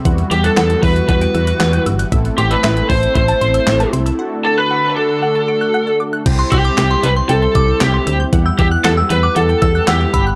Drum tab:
CC |----------------|----------------|----------------|x---------------|
HH |xxxxxxoxxxxxxxxx|xxxxxxoxxxxxxxxx|----------------|x-x-x-x-x-x-x-x-|
CP |----x-------x---|----x-------x---|----------------|----x-------x---|
SD |----o-------o---|----o-------o---|----------------|----o-------o---|
BD |o-----o-o-------|o-----o-o-------|----------------|o-o-------o-----|

CC |----------------|
HH |x-x-x-x-x-x-x-x-|
CP |----x-------x---|
SD |----o-------o---|
BD |o-o-------o---o-|